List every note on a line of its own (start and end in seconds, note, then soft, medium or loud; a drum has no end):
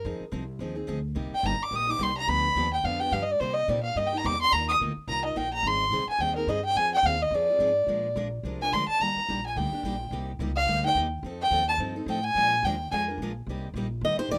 0.05 0.19 F2 medium
0.05 0.23 F3 medium
0.05 0.23 C4 medium
0.05 0.24 D#4 medium
0.05 0.24 G#4 medium
0.20 muted upright bass stroke soft
0.32 0.59 C2 loud
0.32 0.42 F3 medium
0.32 0.43 C4 medium
0.32 0.43 D#4 medium
0.32 0.43 G#4 medium
0.59 0.87 D#2 medium
0.59 0.76 F3 medium
0.59 0.76 C4 medium
0.59 0.75 D#4 medium
0.59 0.74 G#4 medium
0.75 0.86 C4 medium
0.75 0.87 D#4 medium
0.75 0.87 G#4 medium
0.87 1.15 D2 medium
0.87 0.98 F3 medium
0.87 0.98 C4 medium
0.87 0.98 D#4 medium
0.87 0.99 G#4 loud
1.15 1.31 C2 medium
1.15 1.34 C3 medium
1.15 1.34 G3 medium
1.15 1.35 A#3 medium
1.15 1.35 D#4 medium
1.15 1.35 G4 medium
1.32 1.48 G5 loud
1.32 muted upright bass stroke soft
1.43 1.58 G1 loud
1.43 1.54 C3 medium
1.43 1.55 G3 medium
1.43 1.55 A#3 medium
1.43 1.55 D#4 medium
1.43 1.55 G4 loud
1.43 1.64 A#5 medium
1.59 1.77 D6 medium
1.59 muted upright bass stroke soft
1.71 1.98 A#1 medium
1.71 1.87 C3 medium
1.71 1.87 G3 medium
1.71 1.88 A#3 medium
1.71 1.88 D#4 medium
1.71 1.86 G4 medium
1.75 1.92 D#6 loud
1.87 1.99 A#3 soft
1.87 1.99 D#4 medium
1.87 1.99 G4 medium
1.87 2.04 D6 loud
1.99 2.27 C2 medium
1.99 2.10 C3 medium
1.99 2.10 G3 medium
1.99 2.10 A#3 loud
1.99 2.11 D#4 loud
1.99 2.11 G4 loud
1.99 2.17 C6 medium
2.17 2.30 A#5 loud
2.28 2.55 D2 medium
2.28 2.47 D3 medium
2.28 2.47 F3 medium
2.28 2.47 B3 medium
2.28 2.47 D4 medium
2.28 2.47 G4 medium
2.28 2.72 B5 loud
2.55 2.83 D#2 medium
2.55 2.66 D3 medium
2.55 2.67 F3 medium
2.55 2.67 B3 medium
2.55 2.67 D4 medium
2.55 2.67 G4 medium
2.73 2.86 G5 medium
2.84 3.11 F2 medium
2.84 3.00 D3 medium
2.84 3.00 F3 medium
2.84 3.00 B3 medium
2.84 3.00 D4 medium
2.84 3.00 G4 medium
2.84 3.02 F5 medium
3.00 3.12 B3 medium
3.00 3.12 D4 soft
3.00 3.12 G4 medium
3.00 3.14 G5 loud
3.12 3.39 G2 loud
3.12 3.22 D3 medium
3.12 3.23 F3 medium
3.12 3.23 B3 medium
3.12 3.23 D4 loud
3.12 3.23 G4 loud
3.12 3.24 F5 medium
3.22 3.33 D#5 medium
3.31 3.42 D5 loud
3.40 3.67 C3 medium
3.40 3.59 C3 medium
3.40 3.59 G3 medium
3.40 3.60 A#3 medium
3.40 3.60 D#4 medium
3.40 3.60 G4 medium
3.40 3.55 C5 medium
3.54 3.71 D#5 loud
3.68 3.95 A#2 medium
3.68 3.78 C3 loud
3.68 3.79 G3 medium
3.68 3.79 A#3 medium
3.68 3.79 D#4 medium
3.68 3.79 G4 loud
3.68 3.82 D5 medium
3.83 3.98 F5 medium
3.95 4.23 G2 medium
3.95 4.11 C3 medium
3.95 4.12 G3 medium
3.95 4.12 A#3 medium
3.95 4.12 D#4 medium
3.95 4.11 G4 medium
3.95 4.08 D#5 medium
4.07 4.19 G5 medium
4.12 4.23 A#3 soft
4.12 4.24 D#4 medium
4.12 4.24 G4 medium
4.17 4.27 A#5 medium
4.24 4.51 E2 loud
4.24 4.34 C3 medium
4.24 4.35 G3 medium
4.24 4.34 A#3 loud
4.24 4.35 D#4 loud
4.24 4.35 G4 medium
4.24 4.41 D6 loud
4.41 4.54 C6 loud
4.52 4.79 D#2 medium
4.52 4.71 D#3 medium
4.52 4.71 A#3 medium
4.52 4.72 D#4 medium
4.52 4.71 F4 medium
4.52 4.72 A#4 medium
4.52 4.68 A#5 loud
4.69 4.76 D#6 loud
4.80 4.95 D2 medium
4.80 4.91 D#3 medium
4.80 4.91 A#3 medium
4.80 4.91 D#4 medium
4.80 4.91 F4 medium
4.80 4.92 A#4 medium
4.97 muted upright bass stroke soft
5.07 5.35 C2 medium
5.07 5.23 D#3 medium
5.07 5.23 A#3 medium
5.07 5.24 D#4 medium
5.07 5.24 F4 medium
5.07 5.23 A#4 medium
5.07 5.23 A#5 loud
5.24 5.35 D#4 soft
5.24 5.36 F4 medium
5.24 5.36 A#4 medium
5.24 5.39 D#5 medium
5.36 5.62 A#1 medium
5.36 5.46 D#3 medium
5.36 5.46 A#3 medium
5.36 5.46 D#4 loud
5.36 5.47 F4 loud
5.36 5.47 A#4 medium
5.36 5.53 G5 medium
5.53 5.69 A#5 loud
5.63 5.90 G#1 loud
5.63 5.83 D#3 medium
5.63 5.83 G3 medium
5.63 5.84 C4 medium
5.63 5.84 D#4 medium
5.63 5.84 G#4 medium
5.67 6.09 C6 loud
5.91 6.06 C2 medium
5.91 6.02 D#3 medium
5.91 6.02 G3 medium
5.91 6.03 C4 medium
5.91 6.03 D#4 medium
5.91 6.03 G#4 medium
6.07 6.22 G#5 medium
6.07 muted upright bass stroke soft
6.19 6.46 D#2 medium
6.19 6.35 D#3 medium
6.19 6.35 G3 medium
6.19 6.35 C4 medium
6.19 6.36 D#4 medium
6.19 6.35 G#4 medium
6.19 6.35 G5 loud
6.36 6.48 C4 medium
6.36 6.48 D#4 medium
6.36 6.48 G#4 medium
6.36 6.50 A#4 medium
6.47 6.75 G2 medium
6.47 6.59 D#3 loud
6.47 6.59 G3 medium
6.47 6.59 C4 medium
6.47 6.59 D#4 medium
6.47 6.59 G#4 loud
6.47 6.64 D#5 medium
6.65 6.78 G5 loud
6.75 7.02 F2 medium
6.75 6.95 F3 medium
6.75 6.96 C4 medium
6.75 6.96 F4 medium
6.75 6.96 G#4 medium
6.75 6.92 G#5 loud
6.95 7.07 G5 loud
7.03 7.30 D#2 loud
7.03 7.15 F3 medium
7.03 7.15 C4 medium
7.03 7.16 F4 medium
7.03 7.16 G#4 medium
7.03 7.23 F5 medium
7.22 7.36 D#5 medium
7.31 7.58 F2 loud
7.31 7.48 F3 medium
7.31 7.48 C4 medium
7.31 8.17 D5 loud
7.35 7.49 F4 medium
7.35 7.49 G#4 medium
7.50 7.59 C4 soft
7.50 7.60 F4 medium
7.50 7.59 G#4 medium
7.59 7.86 G#2 medium
7.59 7.70 F3 medium
7.59 7.70 C4 medium
7.59 7.71 F4 medium
7.59 7.71 G#4 medium
7.87 8.15 A#2 medium
7.87 8.07 F3 medium
7.87 8.07 G#3 medium
7.87 8.07 D4 medium
7.87 8.07 F4 medium
7.87 8.07 A#4 medium
8.16 8.43 A#1 loud
8.16 8.26 F3 medium
8.16 8.27 G#3 medium
8.16 8.27 D4 medium
8.16 8.27 F4 medium
8.16 8.27 A#4 loud
8.43 8.71 C2 medium
8.43 8.60 F3 medium
8.43 8.60 G#3 medium
8.43 8.60 D4 medium
8.43 8.60 F4 medium
8.43 8.60 A#4 medium
8.61 8.73 D4 medium
8.61 8.73 F4 soft
8.61 8.72 A#4 medium
8.61 8.75 G#5 loud
8.72 8.87 D2 medium
8.72 8.83 F3 medium
8.72 8.83 G#3 loud
8.72 8.83 D4 medium
8.72 8.84 F4 loud
8.72 8.84 A#4 loud
8.72 8.88 C6 medium
8.88 9.02 A5 loud
8.88 muted upright bass stroke soft
9.00 9.15 D#2 medium
9.00 9.19 D#3 medium
9.00 9.19 G3 medium
9.00 9.19 A#3 medium
9.00 9.20 D4 medium
9.00 9.20 G4 medium
9.00 9.44 A#5 medium
9.16 muted upright bass stroke soft
9.28 9.55 A#1 medium
9.28 9.38 D#3 medium
9.28 9.39 G3 medium
9.28 9.39 A#3 medium
9.28 9.39 D4 medium
9.28 9.39 G4 loud
9.46 9.59 G#5 medium
9.56 9.71 D2 medium
9.56 9.71 D#3 medium
9.56 9.71 G3 medium
9.56 9.72 A#3 medium
9.56 9.72 D4 medium
9.56 9.71 G4 medium
9.56 10.12 G5 medium
9.71 9.84 A#3 soft
9.71 9.84 D4 medium
9.71 9.84 G4 medium
9.71 muted upright bass stroke soft
9.83 10.10 A#1 medium
9.83 9.95 D#3 medium
9.83 9.95 G3 medium
9.83 9.95 A#3 medium
9.83 9.95 D4 loud
9.83 9.95 G4 loud
10.11 10.38 C2 medium
10.11 10.31 C3 medium
10.11 10.31 G3 medium
10.11 10.31 A#3 medium
10.11 10.31 D#4 medium
10.11 10.31 G4 medium
10.39 10.66 C#2 medium
10.39 10.50 C3 medium
10.39 10.50 G3 medium
10.39 10.50 A#3 medium
10.39 10.51 D#4 loud
10.39 10.51 G4 loud
10.56 10.82 F5 loud
10.67 10.94 D2 medium
10.67 10.83 C3 medium
10.67 10.83 G3 medium
10.67 10.83 A#3 medium
10.67 10.83 D#4 medium
10.67 10.82 G4 medium
10.83 10.95 A#3 soft
10.83 10.96 D#4 medium
10.83 10.95 G4 medium
10.83 10.96 G5 loud
10.95 11.22 D#2 medium
10.95 11.06 C3 medium
10.95 11.06 G3 medium
10.95 11.06 A#3 loud
10.95 11.06 D#4 loud
10.95 11.06 G4 loud
11.23 11.50 F2 loud
11.23 11.43 F3 medium
11.23 11.43 C4 medium
11.23 11.43 D#4 medium
11.23 11.44 A4 medium
11.41 11.66 G5 loud
11.50 11.77 D#2 loud
11.50 11.61 F3 medium
11.50 11.62 C4 medium
11.50 11.62 D#4 medium
11.50 11.62 A4 medium
11.69 11.76 A5 loud
11.78 12.06 G2 loud
11.78 11.95 F3 medium
11.78 11.95 C4 medium
11.78 11.95 D#4 medium
11.78 11.95 A4 medium
11.96 12.07 C4 medium
11.96 12.07 D#4 medium
11.96 12.07 A4 medium
12.06 12.34 A2 medium
12.06 12.18 F3 medium
12.06 12.18 C4 medium
12.06 12.18 D#4 loud
12.06 12.18 A4 loud
12.06 12.25 G5 medium
12.24 12.66 G#5 loud
12.35 12.62 A#2 medium
12.35 12.54 F3 medium
12.35 12.54 G#3 medium
12.35 12.55 D4 medium
12.35 12.55 F4 medium
12.35 12.55 A#4 medium
12.63 12.90 D#2 medium
12.63 12.74 F3 loud
12.63 12.75 G#3 loud
12.63 12.75 D4 medium
12.63 12.75 F4 loud
12.63 12.75 A#4 loud
12.63 12.91 G5 loud
12.91 13.17 F2 medium
12.91 13.07 F3 medium
12.91 13.07 G#3 medium
12.91 13.07 D4 medium
12.91 13.07 F4 medium
12.91 13.07 A#4 medium
12.91 13.01 G#5 loud
13.08 13.20 D4 medium
13.08 13.20 F4 medium
13.08 13.19 A#4 medium
13.18 13.46 A#1 medium
13.22 13.31 F3 loud
13.22 13.31 G#3 medium
13.22 13.31 D4 medium
13.22 13.31 F4 loud
13.22 13.31 A#4 loud
13.47 13.73 C2 medium
13.47 13.67 C3 medium
13.47 13.67 G3 medium
13.47 13.67 A#3 medium
13.47 13.67 D#4 medium
13.47 13.67 G4 medium
13.74 14.01 A#1 medium
13.74 13.86 C3 medium
13.74 13.86 G3 medium
13.74 13.86 A#3 loud
13.74 13.86 D#4 loud
13.74 13.86 G4 medium
14.01 14.17 D#2 loud
14.01 14.19 C3 medium
14.01 14.19 G3 medium
14.01 14.19 A#3 medium
14.01 14.19 D#4 medium
14.01 14.18 G4 medium
14.01 14.18 D#5 medium
14.17 14.31 D#4 medium
14.17 14.31 G4 medium
14.17 14.31 C5 medium
14.17 muted upright bass stroke soft
14.21 14.30 A#3 soft
14.29 14.38 D2 medium
14.29 14.38 C3 medium
14.29 14.38 G3 loud
14.29 14.38 A#3 loud
14.29 14.38 D#4 loud
14.29 14.38 G4 medium
14.29 14.38 D5 medium